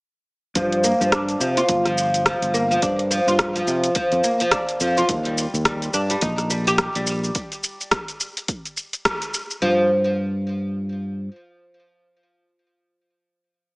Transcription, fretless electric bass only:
0, 0, Header, 1, 2, 480
1, 0, Start_track
1, 0, Key_signature, -2, "minor"
1, 0, Tempo, 566038
1, 476, Time_signature, 4, 2, 24, 8
1, 11664, End_track
2, 0, Start_track
2, 0, Title_t, "Fretless electric bass"
2, 0, Program_c, 0, 35
2, 473, Note_on_c, 0, 43, 89
2, 780, Note_off_c, 0, 43, 0
2, 855, Note_on_c, 0, 43, 72
2, 1142, Note_off_c, 0, 43, 0
2, 1187, Note_on_c, 0, 48, 83
2, 1366, Note_off_c, 0, 48, 0
2, 1434, Note_on_c, 0, 31, 83
2, 1981, Note_off_c, 0, 31, 0
2, 2054, Note_on_c, 0, 31, 85
2, 2341, Note_off_c, 0, 31, 0
2, 2397, Note_on_c, 0, 43, 93
2, 2702, Note_off_c, 0, 43, 0
2, 2774, Note_on_c, 0, 43, 72
2, 3061, Note_off_c, 0, 43, 0
2, 3116, Note_on_c, 0, 48, 85
2, 3291, Note_off_c, 0, 48, 0
2, 3497, Note_on_c, 0, 41, 102
2, 3562, Note_off_c, 0, 41, 0
2, 4076, Note_on_c, 0, 41, 91
2, 4251, Note_off_c, 0, 41, 0
2, 4318, Note_on_c, 0, 39, 89
2, 4623, Note_off_c, 0, 39, 0
2, 4696, Note_on_c, 0, 39, 78
2, 4982, Note_off_c, 0, 39, 0
2, 5038, Note_on_c, 0, 43, 85
2, 5211, Note_off_c, 0, 43, 0
2, 5277, Note_on_c, 0, 34, 82
2, 5822, Note_off_c, 0, 34, 0
2, 5900, Note_on_c, 0, 34, 83
2, 6184, Note_off_c, 0, 34, 0
2, 8160, Note_on_c, 0, 43, 87
2, 9564, Note_off_c, 0, 43, 0
2, 11664, End_track
0, 0, End_of_file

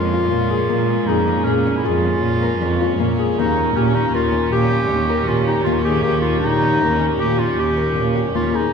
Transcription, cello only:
0, 0, Header, 1, 2, 480
1, 0, Start_track
1, 0, Tempo, 382897
1, 875, Time_signature, 7, 2, 24, 8
1, 10946, End_track
2, 0, Start_track
2, 0, Title_t, "Cello"
2, 0, Program_c, 0, 42
2, 0, Note_on_c, 0, 41, 86
2, 313, Note_off_c, 0, 41, 0
2, 393, Note_on_c, 0, 46, 74
2, 799, Note_off_c, 0, 46, 0
2, 885, Note_on_c, 0, 46, 87
2, 1286, Note_off_c, 0, 46, 0
2, 1356, Note_on_c, 0, 41, 76
2, 1761, Note_off_c, 0, 41, 0
2, 1837, Note_on_c, 0, 46, 84
2, 2241, Note_off_c, 0, 46, 0
2, 2323, Note_on_c, 0, 41, 87
2, 2722, Note_off_c, 0, 41, 0
2, 2785, Note_on_c, 0, 46, 75
2, 3191, Note_off_c, 0, 46, 0
2, 3261, Note_on_c, 0, 41, 89
2, 3669, Note_off_c, 0, 41, 0
2, 3752, Note_on_c, 0, 46, 77
2, 4154, Note_off_c, 0, 46, 0
2, 4237, Note_on_c, 0, 39, 78
2, 4637, Note_off_c, 0, 39, 0
2, 4716, Note_on_c, 0, 46, 89
2, 5114, Note_off_c, 0, 46, 0
2, 5189, Note_on_c, 0, 39, 87
2, 5586, Note_off_c, 0, 39, 0
2, 5662, Note_on_c, 0, 46, 89
2, 6061, Note_off_c, 0, 46, 0
2, 6142, Note_on_c, 0, 39, 76
2, 6542, Note_off_c, 0, 39, 0
2, 6622, Note_on_c, 0, 46, 85
2, 7021, Note_off_c, 0, 46, 0
2, 7104, Note_on_c, 0, 39, 77
2, 7502, Note_off_c, 0, 39, 0
2, 7581, Note_on_c, 0, 39, 83
2, 7981, Note_off_c, 0, 39, 0
2, 8062, Note_on_c, 0, 46, 80
2, 8463, Note_off_c, 0, 46, 0
2, 8547, Note_on_c, 0, 39, 84
2, 8946, Note_off_c, 0, 39, 0
2, 9023, Note_on_c, 0, 46, 81
2, 9424, Note_off_c, 0, 46, 0
2, 9497, Note_on_c, 0, 39, 75
2, 9902, Note_off_c, 0, 39, 0
2, 9984, Note_on_c, 0, 46, 87
2, 10389, Note_off_c, 0, 46, 0
2, 10467, Note_on_c, 0, 39, 74
2, 10872, Note_off_c, 0, 39, 0
2, 10946, End_track
0, 0, End_of_file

